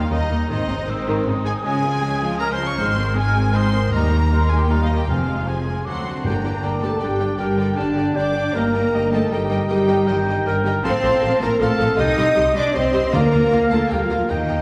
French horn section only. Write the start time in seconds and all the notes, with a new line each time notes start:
0.51 C4 D#4
1.64 G#3 F4
2.79 G#3 D#4
3.94 G3 D#4
5.08 G#3 C4
5.84 A3 C4 C5
6.24 A#4
6.84 A4
7.02 G4
7.41 G4
7.79 D4
8.16 D5
8.55 A#4
9.13 A4
9.34 G4
9.73 G4
10.12 D#4
10.87 C5
11.42 A#4
11.60 A4
11.97 D#5
12.56 D5
12.74 C5
13.15 A#4
13.72 A4
13.93 G4
14.04 F4
14.16 F4
14.29 D#4